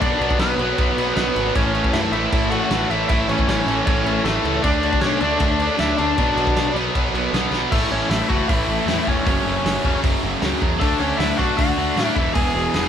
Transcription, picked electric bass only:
0.01 B1
0.20 B1
0.39 B1
0.58 B1
0.79 B1
0.96 B1
1.16 B1
1.36 G#1
1.56 A1
1.93 F#2
2.12 A1
2.33 A1
2.70 A1
2.89 A1
3.10 A1
3.28 A1
3.47 A1
3.66 A1
3.87 A1
4.04 A1
4.24 A1
4.44 C#2
4.64 D2
5.02 B2
5.22 D2
5.40 D2
5.80 D2
5.99 D2
6.18 B1
6.36 B1
6.56 B1
6.74 B1
6.95 B1
7.14 B1
7.33 B1
7.51 B1
7.72 A1
7.90 A1
8.09 A1
8.30 F#1
8.49 A1
8.67 A1
8.86 E2
9.07 E1
9.26 F#1
9.45 F#1
9.64 F#1
9.84 E1
10.04 F#1
10.23 F#1
10.42 C#2
10.62 E2
10.82 D2
10.99 D2
11.19 D2
11.39 B1
11.59 D2
11.77 D2
11.96 A2
12.16 E1
12.36 E1
12.55 E1
12.74 E1

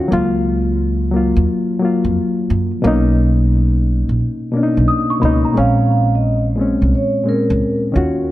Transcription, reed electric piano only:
Already playing: D#3 C#4 F4 F#4
0.08 F#3 A#3
0.13 F4
1.11 F#3 A#3
1.16 F4
1.79 F#3 A#3
1.85 F4
2.82 B2 A#3 C#4
2.87 D#4
4.52 B2 A#3 C#4
4.57 D4
4.63 D#4
5.20 B2 A#3 C#4
5.25 D#4
5.52 A#2 G#3 C4
5.58 C#4
6.56 A#2 G#3 C4
6.61 C#4
7.23 A#2 G#3 C4
7.29 C#4
7.92 D#3 C#4 F4
7.97 F#4

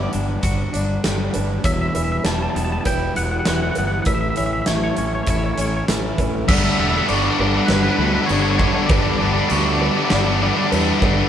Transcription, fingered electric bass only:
0.15 G1
0.43 G1
0.75 G1
1.06 G1
1.36 G1
1.64 E1
1.96 E1
2.24 E1
2.56 E1
2.86 E1
3.17 E1
3.48 E1
3.78 G1
4.06 A1
4.39 A1
4.68 A1
4.98 A1
5.27 A1
5.58 A1
5.89 A1
6.19 A1
6.48 G1
6.80 E1
7.10 G1
7.39 G1
7.68 G1
7.98 D2
8.30 G1
8.90 G1
9.21 G1
9.51 D2
10.12 G1
10.73 E2
11.02 G1

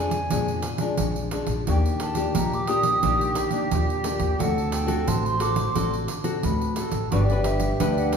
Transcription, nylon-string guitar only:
Already playing: F2 F3 G#3 D4
0.31 A#2 F3 G#3 D4
0.79 F3 G#3 D4
0.99 F2
1.32 F3 G#3 D4
1.68 D#3 A#3 D4 G4
2.16 A#3 D4 G4
2.35 A#2
2.68 A#3 D4 G4
3.03 D#3 A#3 D4 G4
3.52 A#3 D4 G4
3.72 A#2
4.04 A#3 D4 G4
4.39 D3 C4 F#4 A4
4.87 C4 F#4 A4
5.06 A2
5.40 C4 F#4 A4
5.75 D3 C4 F#4 A4
6.24 C4 F#4 A4
6.43 A2
6.77 C4 F#4 A4
7.12 G3 D4 F#4 B4
7.31 D4 B4
7.80 D3 D4 B4

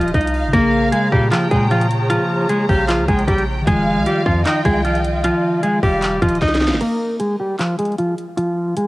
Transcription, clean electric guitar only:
Already playing: F3
0.14 D#4 D#5
0.53 A#3 A#4
0.92 G#3 G#4
1.12 G3 G4
1.32 F3 F4
1.51 G#3 G#4
1.71 F3 F4
2.10 F3 F4
2.49 G#3 G#4
2.69 G3 G4
2.89 F3 F4
3.08 G#3 G#4
3.28 G3 G4
3.67 G#3 G#4
4.06 G3 G4
4.26 F3 F4
4.46 D#4 D#5
4.65 G#3 G#4
4.85 F3 F4
5.24 F3 F4
5.63 G#3 G#4
5.83 G3 G4
6.22 F3 F4
6.42 D#4 D#5
6.81 A#3 A#4
7.20 G#3 G#4
7.40 G3 G4
7.59 F3 F4
7.79 G#3 G#4
7.99 F3 F4
8.37 F3 F4
8.77 G#3 G#4

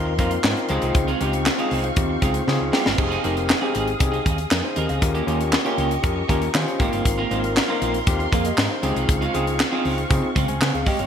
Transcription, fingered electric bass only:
Already playing: D#2
0.19 F2
0.44 G#2
0.70 C#2
0.82 C2
0.95 C#2
1.21 C#2
1.71 C2
1.97 D#2
2.22 C#2
2.48 C#3
2.61 C#2
2.87 G1
2.98 F1
3.25 F1
3.75 G#1
4.01 C2
4.26 D#2
4.51 F2
4.77 D#2
4.89 C#2
5.02 D#2
5.27 D#2
5.78 C#2
6.04 F2
6.29 D#2
6.55 D#3
6.80 G#1
6.93 G1
7.05 G#1
7.31 G#1
7.82 A#1
8.07 D#2
8.33 F2
8.58 G#2
8.83 C#2
8.96 C2
9.09 C#2
9.35 C#2
9.85 C#2
10.11 C#3
10.36 C#3
10.49 C#2
10.61 C#3
10.74 C#2
10.99 G1

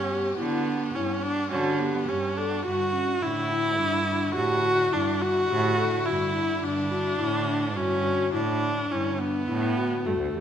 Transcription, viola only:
Already playing: C#4
0.37 B3
0.95 C#4
1.23 D4
1.51 C#4
1.79 B3
2.08 C#4
2.38 D4
2.66 F#4
3.22 E4
4.35 F#4
4.93 D4
5.21 F#4
6.06 E4
6.63 D4
7.77 C#4
8.34 D4
8.91 C#4
9.19 B3
10.06 A3

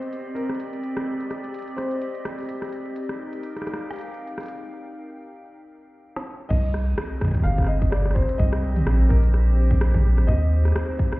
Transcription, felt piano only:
Already playing: C5
0.35 A#4
1.76 C5
6.49 D#5
7.44 F5
7.67 D#5
7.91 D5
8.14 C5
8.38 D#5
9.09 A#4
10.27 D#5

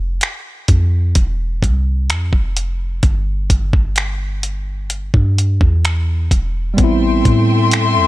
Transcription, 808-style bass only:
Already playing: F1
0.69 F2
1.16 E1
1.63 C2
2.09 F2
2.33 F1
3.03 G1
3.50 G1
5.14 G2
5.61 E2
6.31 E1
6.78 A1
7.25 A2
7.96 E2

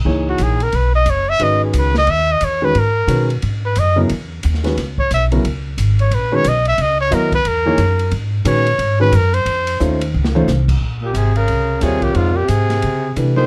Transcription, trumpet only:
0.29 F#4
0.43 G#4
0.63 A#4
0.76 B4
0.95 D#5
1.10 C#5
1.29 E5
1.43 D#5
1.64 G#4
1.78 B4
1.98 D#5
2.10 E5
2.32 D#5
2.44 C#5
2.65 B4
2.79 A#4
3.65 B4
3.79 D#5
4.99 C#5
5.14 E5
6.01 C#5
6.14 B4
6.35 C#5
6.48 D#5
6.68 E5
6.81 D#5
7.01 C#5
7.14 A#4
7.35 B4
7.48 A#4
8.47 C#5
9.01 B4
9.16 A#4
9.34 C5
11.05 G4
11.17 G#4
11.37 A#4
11.83 G#4
12.03 G4
12.16 F4
12.36 G4
12.49 G#4
13.37 C5

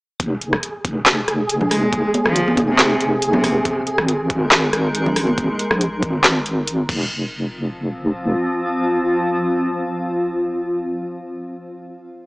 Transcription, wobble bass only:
0.20 F1
0.85 F1
2.26 G#1
2.57 F1
3.98 G#1
4.30 G#1
4.52 G#1
5.71 A#1
6.03 G#1
6.67 G#1
6.89 F1

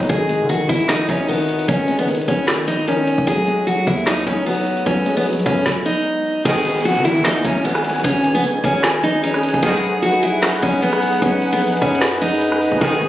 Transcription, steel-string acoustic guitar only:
0.10 G#4
0.49 F#4
0.69 E4
0.89 D#4
1.09 C#4
1.29 B3
1.68 C#4
1.99 B3
2.28 C#4
2.68 D#4
2.88 C#4
3.27 G#4
3.67 F#4
3.87 E4
4.07 D#4
4.27 C#4
4.46 B3
4.86 C#4
5.17 B3
5.46 C#4
5.86 D#4
6.45 G#4
6.85 F#4
7.05 E4
7.25 D#4
7.45 C#4
7.65 B3
8.04 C#4
8.35 B3
8.64 C#4
9.03 D#4
9.24 C#4
9.63 G#4
10.02 F#4
10.23 E4
10.43 D#4
10.63 C#4
10.82 B3
11.22 C#4
11.53 B3
11.82 C#4
12.21 D#4
12.81 G#4

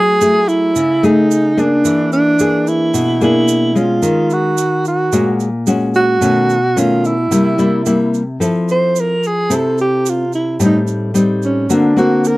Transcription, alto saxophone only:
Already playing: G#4
0.48 E4
1.05 D#4
1.59 D4
2.13 D4
2.68 E4
3.24 E4
3.77 F4
4.33 F#4
4.88 F#4
5.96 F#4
6.79 F4
7.07 E4
8.71 C5
9.00 A#4
9.27 G#4
9.55 A4
9.81 G4
10.09 F4
10.35 E4
10.66 D#4
11.45 C#4
11.73 D4
11.99 F#4
12.28 A#4

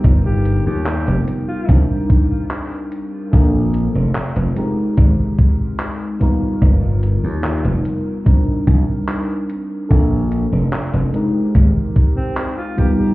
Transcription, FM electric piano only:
Already playing: G3 B3 D#4 F4 A#4
1.67 G3 C4 D4 D#4 A#4
3.32 C4 D4 F4 A4 A#4
4.55 G#3 C4 D#4 G4 A#4
6.19 G3 B3 D#4 F4 A#4
8.25 G3 C4 D4 D#4 A#4
9.89 C4 D4 F4 A4 A#4
11.12 G#3 C4 D#4 G4 A#4
12.77 G3 B3 D#4 F4 A#4

